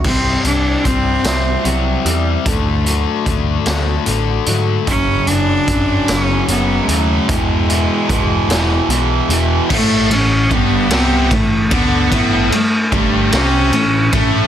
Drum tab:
CC |x-----|------|------|------|
RD |------|------|------|------|
HH |-xxxxx|xxxxxx|xxxxxx|xxxxxx|
SD |---o--|---o--|---o--|---o--|
BD |o-o---|o-o---|o-o---|o-o---|

CC |x-----|------|
RD |-xxxxx|xxxxxx|
HH |------|------|
SD |---o--|---o--|
BD |o-o-oo|o-o--o|